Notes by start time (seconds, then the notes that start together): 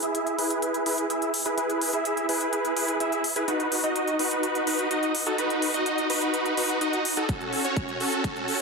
0.03 E4 G#4 E5, closed hi-hat
0.15 closed hi-hat
0.27 closed hi-hat
0.38 E4 G#4 B4, open hi-hat
0.51 closed hi-hat
0.62 closed hi-hat
0.74 closed hi-hat
0.86 E4 G#4 B4, open hi-hat
0.98 closed hi-hat
1.10 E4 G#4 E5, closed hi-hat
1.22 closed hi-hat
1.34 open hi-hat
1.46 E4 G#4 B4, closed hi-hat
1.58 E4 G#4 B4, closed hi-hat
1.70 closed hi-hat
1.82 open hi-hat
1.93 E4 G#4 E5, closed hi-hat
2.05 closed hi-hat
2.17 closed hi-hat
2.29 E4 G#4 B4, open hi-hat
2.41 closed hi-hat
2.53 closed hi-hat
2.65 closed hi-hat
2.77 E4 G#4 B4, open hi-hat
2.88 closed hi-hat
3.00 E4 G#4 E5, closed hi-hat
3.12 closed hi-hat
3.24 open hi-hat
3.36 E4 G#4 B4, closed hi-hat
3.48 D#4 F#4 B4, closed hi-hat
3.60 closed hi-hat
3.72 open hi-hat
3.84 D#4 F#4 D#5, closed hi-hat
3.96 closed hi-hat
4.07 closed hi-hat
4.19 D#4 F#4 B4, open hi-hat
4.31 closed hi-hat
4.43 closed hi-hat
4.55 closed hi-hat
4.67 D#4 F#4 B4, open hi-hat
4.79 closed hi-hat
4.91 D#4 F#4 D#5, closed hi-hat
5.03 closed hi-hat
5.15 open hi-hat
5.26 D#4 F#4 A4, closed hi-hat
5.38 D#4 F#4 B4, closed hi-hat
5.50 closed hi-hat
5.62 open hi-hat
5.74 D#4 F#4 D#5, closed hi-hat
5.86 closed hi-hat
5.98 closed hi-hat
6.10 D#4 F#4 B4, open hi-hat
6.22 closed hi-hat
6.34 closed hi-hat
6.46 closed hi-hat
6.57 D#4 F#4 B4, open hi-hat
6.69 closed hi-hat
6.81 D#4 F#4 D#5, closed hi-hat
6.93 closed hi-hat
7.05 open hi-hat
7.17 D#4 F#4 A4, closed hi-hat
7.29 C#4 F#4 A4, kick, closed hi-hat
7.41 closed hi-hat
7.53 open hi-hat
7.65 C#4 F#4 C#5, closed hi-hat
7.76 kick, closed hi-hat
7.88 closed hi-hat
8.00 C#4 F#4 A4, open hi-hat
8.12 closed hi-hat
8.24 C#4 F#4 A4, kick, closed hi-hat
8.36 closed hi-hat
8.48 open hi-hat